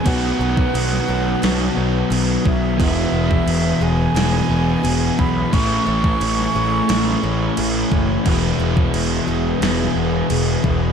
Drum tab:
CC |x---x---x---x---|x---x---x---x---|x---x---x---x---|x---x---x---x---|
SD |-----o--o-------|--------o-------|-----o--o-------|--------o-------|
BD |o--o----------o-|o--o----------o-|o--o----------o-|o--o----------o-|